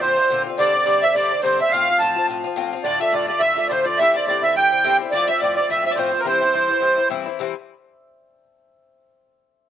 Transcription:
Already playing: hammered dulcimer A4 D5 E5
0.01 bouzouki A#2 D3 C4 F4, hammered dulcimer C5, accordion C5, fiddle C5
0.17 bouzouki D3 C4 F4
0.30 bouzouki A#2 D3 C4 F4
0.46 bouzouki D3 C4 F4
0.57 bouzouki G2 D3 C4 D4, fiddle D5, accordion D5, hammered dulcimer D5
0.73 bouzouki D3 C4 D4
0.85 bouzouki G2 D3 C4 D4
1.01 bouzouki C4 D4, fiddle E5, accordion E5
1.05 bouzouki D3
1.14 bouzouki G2 D3 C4 D4, fiddle D5, accordion D5, hammered dulcimer D5
1.31 bouzouki D3 C4 D4
1.42 bouzouki G2 D3 C4 D4, accordion C5, fiddle C5, hammered dulcimer C5
1.58 bouzouki C4 D4, hammered dulcimer E5, fiddle E5, accordion E5
1.63 bouzouki D3
1.69 bouzouki A2, hammered dulcimer F5, fiddle F5, accordion F5
1.74 bouzouki F3 C4 F4
1.87 bouzouki F3 C4 F4
1.98 bouzouki A2 F3 C4, hammered dulcimer A5, accordion A5, fiddle A5
2.02 bouzouki F4
2.16 bouzouki F3 C4 F4
2.28 bouzouki A2 F3 C4 F4
2.44 bouzouki F3 C4 F4
2.56 bouzouki A2 F3 C4 F4
2.73 bouzouki F3 C4 F4
2.84 bouzouki A2 D3 A3 F4, hammered dulcimer D5, accordion D5, fiddle D5
3.00 bouzouki D3 A3 F4, hammered dulcimer E5, fiddle E5, accordion E5
3.12 bouzouki A2 D3 A3 F4, fiddle D5, hammered dulcimer D5, accordion D5
3.27 bouzouki D3 A3 F4, fiddle D5, accordion D5, hammered dulcimer D5
3.39 bouzouki A2 D3 A3 F4, hammered dulcimer E5, accordion E5, fiddle E5
3.56 bouzouki D3 A3 F4, hammered dulcimer E5, accordion E5
3.69 bouzouki A2 D3 A3 F4, fiddle C5, hammered dulcimer C5, accordion C5 D5
3.85 bouzouki D3 A3 F4, fiddle D5, hammered dulcimer D5, accordion D5
3.98 bouzouki G2 D3 C4 E4, fiddle E5, accordion E5, hammered dulcimer E5
4.15 bouzouki D3 C4 E4, fiddle D5, accordion D5, hammered dulcimer D5
4.26 bouzouki G2 D3 C4 E4, fiddle D5, hammered dulcimer D5, accordion D5
4.42 bouzouki D3 C4 E4, accordion E5, hammered dulcimer E5, fiddle E5
4.55 bouzouki G2 D3 C4 E4, fiddle G5, accordion G5, hammered dulcimer G5
4.70 bouzouki D3 C4 E4
4.84 bouzouki G2 D3 C4 E4, hammered dulcimer E5
5.00 bouzouki D3 C4 E4
5.12 bouzouki A2 F3 C4 F4, accordion D5, fiddle D5, hammered dulcimer D5
5.27 bouzouki C4 F4, fiddle E5, hammered dulcimer E5, accordion E5
5.32 bouzouki F3
5.39 bouzouki A2 F3 C4, fiddle D5, hammered dulcimer D5, accordion D5
5.44 bouzouki F4
5.56 bouzouki C4 F4, accordion D5, fiddle D5, hammered dulcimer D5
5.61 bouzouki F3
5.69 bouzouki A2 F3 C4, hammered dulcimer E5, fiddle E5, accordion E5
5.73 bouzouki F4
5.84 bouzouki F3 C4 F4, hammered dulcimer E5, fiddle E5, accordion E5
5.90 hammered dulcimer D5, fiddle D5, accordion D5
5.96 bouzouki A2 F3 C4 F4, hammered dulcimer C5, accordion C5, fiddle C5
6.11 bouzouki F3 C4 F4
6.20 accordion A#4, fiddle A#4
6.25 bouzouki G2 E3 C4 E4, hammered dulcimer C5, fiddle C5, accordion C5
6.41 bouzouki E3 C4 E4
6.53 bouzouki G2 E3 C4 E4
6.68 bouzouki E3 C4 E4
6.81 bouzouki G2 E3 C4 E4
6.96 bouzouki E3 C4 E4
7.10 bouzouki G2 E3 C4 E4
7.26 bouzouki E3 C4 E4
7.39 bouzouki G2 E3 C4 E4

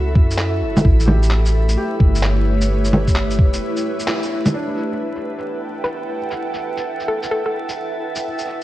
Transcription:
Already playing: 808-style bass C#2, synth texture E4 E5, felt piano F#4, ambient pad F#4 A4 E5
0.15 808-style bass F#2, kick
0.31 shaker
0.38 clap
0.61 808-style bass F#1
0.77 low bongo, shaker
0.84 808-style bass A1, ambient pad A3, felt piano E4, kick
1.00 ambient pad E4 B4, shaker
1.05 felt piano G4, low bongo
1.20 ambient pad G4, shaker
1.30 clap
1.46 shaker
1.56 ambient pad C#5
1.69 shaker
1.77 felt piano G4
2.00 808-style bass G1, kick
2.15 shaker
2.23 clap
2.61 shaker
2.85 shaker
2.93 low bongo
3.07 kick, shaker
3.15 clap
3.31 shaker
3.39 808-style bass E1, kick
3.53 shaker
3.77 shaker
4.00 shaker
4.08 felt piano E4, clap
4.23 shaker
4.46 low bongo, shaker
4.53 felt piano D4, synth texture A4 A5
4.68 ambient pad E5 G5, shaker
4.92 shaker
5.09 ambient pad F#5
5.15 shaker
5.38 shaker
5.84 synth pluck B4, shaker
6.31 shaker
6.54 shaker
6.77 shaker
7.00 shaker
7.08 synth pluck A4
7.23 shaker
7.31 synth pluck A4
7.46 synth pluck A4
7.69 shaker
8.15 shaker
8.24 ambient pad B3
8.29 ambient pad F#4
8.38 shaker
8.55 ambient pad A4

